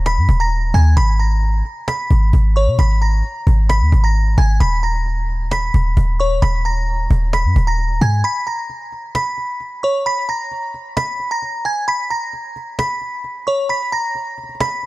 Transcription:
Already playing: D#1
0.06 B5 B6, cajon slap
0.17 F#2
0.29 D#1, cajon bass
0.40 A#5 A#6
0.74 D#2 G#5 G#6, cajon bass
0.97 G#1 B5 B6, cajon bass
1.19 A#5 A#6, cajon slap
1.42 cajon slap
1.65 cajon slap
1.88 B5 B6, cajon slap
2.11 G#1, cajon bass
2.33 G#1, cajon bass
2.56 C#5 C#6, cajon slap
2.67 B2
2.79 G#1 B5 B6, cajon bass
3.02 A#5 A#6, cajon slap
3.24 cajon slap
3.47 G#1, cajon bass
3.69 B5 B6, cajon slap
3.81 D#2
3.92 G#1, cajon bass
4.04 A#5 A#6
4.15 cajon slap
4.38 G#1 G#5 G#6, cajon bass
4.60 D#1 B5 B6, cajon bass
4.83 A#5 A#6, cajon slap
5.06 cajon slap
5.29 cajon slap
5.51 B5 B6, cajon slap
5.74 D#1, cajon bass
5.97 D#1, cajon bass
6.20 C#5 C#6, cajon slap
6.42 D#1 B5 B6, cajon bass
6.65 A#5 A#6, cajon slap
6.88 cajon slap
7.10 D#1, cajon bass
7.22 cajon slap
7.28 cajon slap
7.33 B5 B6, cajon slap
7.45 F#2
7.56 D#1, cajon bass
7.67 A#5 A#6
7.79 cajon slap
8.01 G#2 G#5 G#6, cajon bass
8.24 B5 B6, cajon slap
8.47 A#5 A#6, cajon slap
8.70 cajon slap
8.92 cajon slap
9.15 B5 B6, cajon slap
9.38 cajon slap
9.60 cajon slap
9.83 C#5 C#6, cajon slap
10.06 B5 B6, cajon slap
10.29 A#5 A#6, cajon slap
10.51 cajon slap
10.74 cajon slap
10.97 B5 B6, cajon slap
11.20 cajon slap
11.31 A#5 A#6
11.42 cajon slap
11.65 G#5 G#6, cajon slap
11.88 B5 B6, cajon slap
12.10 A#5 A#6, cajon slap
12.33 cajon slap
12.56 cajon slap
12.79 B5 B6, cajon slap
13.01 cajon slap
13.24 cajon slap
13.47 C#5 C#6, cajon slap
13.69 B5 B6, cajon slap
13.92 A#5 A#6, cajon slap
14.15 cajon slap
14.38 cajon slap
14.44 cajon slap
14.49 cajon slap
14.55 cajon slap
14.60 B5 B6, cajon slap
14.83 cajon slap

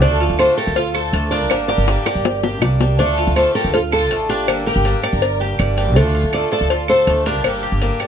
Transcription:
0.01 D2 D3 A3 D4 F4 A4 D5, cowbell
0.20 F4
0.30 D2
0.39 D3 A3 D4 F4 A4 C5, cowbell, claves
0.57 A3 D4 F4 G4 A4 A#4
0.67 D2
0.75 F4 A4, muted steel-string acoustic guitar stroke, cowbell
0.94 A3 D4 F4 A4 C5, claves
1.12 D2 D3 A3 D4 F4, cowbell
1.31 A3 D4 F4 A#4 D5, cowbell
1.50 G1 D3 G3 A#3 D4 G4, cowbell, high bongo, claves
1.68 G4 A#4 D5, high bongo
1.78 G1
1.87 D3 G3 A#3 D4 G4, cowbell, high bongo
2.05 A#3 D4 G4 A#4 D5, cowbell, high bongo, claves
2.15 G1
2.25 muted steel-string acoustic guitar stroke, cowbell, low bongo
2.43 A#3 D4 G4, low bongo
2.61 C2 G3 A#3 D4 G4 D5, cowbell, low bongo, claves
2.80 G3 A#3 D4 G4, cowbell, low bongo
2.98 D2 D3 A3 D4 F4 A4 D5, cowbell
3.18 F4
3.27 D2
3.36 D3 A3 D4 F4 A4 C5, cowbell, claves
3.55 A3 D4 F4 G4 A4 A#4
3.65 D2
3.73 F4 A4, muted steel-string acoustic guitar stroke, cowbell
3.92 A3 D4 F4 A4, claves
4.10 A1 D3 A3 D4 F4, cowbell
4.29 A3 D4 F4 G4, cowbell
4.48 G1 D3 G3 A#3 D4 G4, cowbell, claves
4.66 G4 A#4
4.76 G1
4.85 D3 G3 A#3 D4 G4, cowbell
5.03 A#3 D4 G4 A#4 D5, cowbell, claves
5.13 G1
5.22 muted steel-string acoustic guitar stroke, cowbell
5.40 A#3 D4 G4
5.58 G1 G3 A#3 D4 G4 D5, cowbell, claves
5.77 G3 A#3 D4 G4, cowbell
5.95 D2 D3 A3 D4 F4 A4, cowbell
6.15 F4
6.24 D2
6.33 D3 A3 D4 F4 A4 D5, cowbell, claves
6.51 A3 D4 F4 A4 D5
6.61 D2
6.70 F4, muted steel-string acoustic guitar stroke, cowbell
6.88 A3 D4 F4 A4 C5, claves
7.07 D2 D3 A3 D4 F4, cowbell
7.26 A3 D4 F4 G4 A#4, cowbell
7.44 G1 D3 G3 A#3 D4 G4, cowbell, claves
7.63 G4
7.72 G1
7.81 D3 G3 A#3 D4 G4, cowbell
8.00 A#3 D4 G4 D5, cowbell, claves

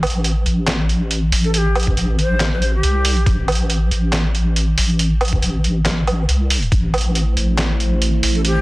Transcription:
Already playing: A1
0.03 closed hi-hat, low woodblock
0.07 closed hi-hat
0.10 closed hi-hat
0.24 closed hi-hat
0.46 A1, closed hi-hat
0.67 snare, clap, closed hi-hat
0.89 closed hi-hat
1.11 closed hi-hat
1.32 A1, open hi-hat
1.44 A4, closed hi-hat
1.54 G4 A4, closed hi-hat
1.75 closed hi-hat, low woodblock
1.80 closed hi-hat
1.83 closed hi-hat
1.87 kick
1.97 A1, closed hi-hat
2.18 C5, closed hi-hat
2.40 snare, clap, closed hi-hat
2.52 C5
2.62 closed hi-hat
2.73 G4
2.83 C2, closed hi-hat
3.05 open hi-hat
3.17 closed hi-hat
3.26 A1, kick, closed hi-hat
3.48 closed hi-hat, low woodblock
3.52 closed hi-hat
3.55 closed hi-hat
3.70 closed hi-hat
3.91 A1, closed hi-hat
4.13 snare, clap, closed hi-hat
4.35 closed hi-hat
4.56 closed hi-hat
4.77 A1, open hi-hat
4.90 closed hi-hat
4.99 closed hi-hat
5.21 closed hi-hat, low woodblock
5.25 closed hi-hat
5.28 closed hi-hat
5.33 kick
5.42 A1, closed hi-hat
5.64 closed hi-hat
5.86 snare, clap, closed hi-hat
6.07 closed hi-hat, low woodblock
6.28 C2, closed hi-hat
6.50 open hi-hat
6.62 closed hi-hat
6.72 A1 A3 E4 C5, kick, closed hi-hat
6.94 closed hi-hat, low woodblock
6.98 closed hi-hat
7.01 closed hi-hat
7.15 closed hi-hat
7.37 A1, closed hi-hat
7.58 snare, clap, closed hi-hat
7.80 closed hi-hat
8.02 closed hi-hat
8.23 A1, open hi-hat
8.35 A4, closed hi-hat
8.44 G4, closed hi-hat

